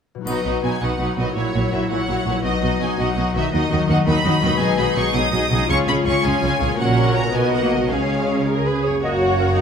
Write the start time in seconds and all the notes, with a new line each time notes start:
0.15 B2 F#3
0.21 D#4 F#4
0.26 B1 B2 F#3 D#4 F#4 B4 D#5, triangle
0.45 B1 B2 F#3 D#4 F#4 B4
0.63 B1 B2 F#3 D#4 F#4 B4 G#5
0.81 B1 B2 F#3 D#4 F#4 B4 F#5
0.99 B1 B2 F#3 D#4 F#4 B4
1.17 B1 A#2 B2 F#3 D#4 F#4 B4 D#5
1.23 F#3
1.27 E4
1.32 F#4 C#5
1.36 A#1 A#2 F#3 E4 C#5
1.53 A#1 A#2 F#3 E4 F#4 C#5
1.72 A#1 A#2 F#3 E4 F#4 C#5 E5
1.90 A#1 A#2 F#3 E4 F#4 C#5 F#5
2.07 A#1 A#2 F#3 E4 F#4 C#5
2.26 A#1 A#2 B2 F#3 E4 F#4 C#5
2.32 F#3
2.36 D#4
2.40 F#4 D#5
2.45 B1 B2 F#3 D#4 D#5
2.63 B1 B2 F#3 D#4 F#4 D#5
2.80 B1 B2 F#3 D#4 F#4 D#5 G#5
2.99 B1 B2 F#3 D#4 F#4 D#5 F#5
3.16 B1 B2 F#3 D#4 F#4 D#5
3.34 B1 B2 D#3 F#3 D#4 F#4 D#5 E5
3.40 F#3
3.44 D#4
3.49 F#4 D#5
3.53 D#2 D#3 F#3 D#4 F#4 D#5
3.70 D#2 D#3 F#3 D#4 F#4 D#5
3.88 D#2 D#3 F#3 D#4 F#4 D#5 F#5
4.07 D#2 D#3 F#3 D#4 F#4 D#5 B5
4.24 D#2 D#3 F#3 D#4 F#4 D#5
4.42 D#2 B2 D#3 F#3 D#4 F#4 D#5
4.47 G#3
4.52 D#4
4.57 B2 F#4 G#4 D#5 G#5
4.61 B1 F#3 D#4
4.78 B1 B2 F#3 D#4 G#4 D#5 B5
4.96 B1 B2 F#3 D#4 G#4 D#5 C#6
5.14 B1 B2 F#3 D#4 G#4 D#5 D#6
5.33 B1 B2 F#3 D#4 G#4 D#5
5.51 B1 B2 C#3 F#3 D#4 G#4 D#5
5.56 G#3
5.60 C#4
5.65 F4
5.69 C#2 C#3 C#4 F4 G#4 C#5 C#6
5.88 C#2 C#3 C#4 F4 G#4 C#5 B5
6.05 C#2 C#3 C#4 F4 G#4 C#5 C#6
6.24 C#2 C#3 C#4 F4 G#4 C#5 G#5
6.42 C#2 C#3 C#4 F4 G#4 C#5
6.60 C#2 A#2 C#3 C#4 F4 G#4 C#5
6.66 A#3
6.70 C#4
6.75 C#4 F#4 A#4 C#5 F#5
6.79 A#1 A#2
7.16 B2 A#5
7.21 A#3
7.26 D#4
7.30 F#4 A#4 D#5
7.35 B1 B2 B3 F#4 G#5
7.53 F#5
7.62 A#3
7.72 C#3 D#5
7.77 G#3
7.82 C#4
7.90 C#2 C#3 G#3 C#4 G#4 C#5 F5
8.47 G#4 A#4
8.66 B4
8.86 F#2 C#5
8.91 A#3
8.95 C#4
9.03 F#1 F#2 A#3 F#4 C#5 D#5 F#5 A#5
9.21 C#5
9.40 A#4
9.56 D#4 F#4